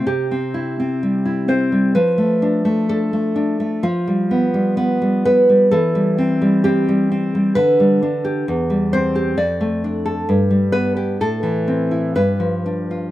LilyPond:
\new Staff \with { instrumentName = "Nylon-string guitar" } { \time 2/4 \key c \major \tempo 4 = 64 << { g'4. c''8 | b'4 a'4 | f'4. b'8 | a'4 g'4 |
b'4. c''8 | d''4. b'8 | a'4 b'4 | } \\ { c16 c'16 e'16 c'16 g16 e'16 c'16 g16 | f16 a16 d'16 a16 d'16 a16 d'16 a16 | f16 g16 b16 g16 b16 g16 b16 g16 | e16 g16 c'16 g16 c'16 g16 c'16 g16 |
d16 g16 d'16 g'16 e,16 g16 c'16 g'16 | f,16 a16 d'16 a'16 g,16 g16 b16 g'16 | a,16 e16 c'16 e'16 g,16 f16 d'16 f'16 | } >> }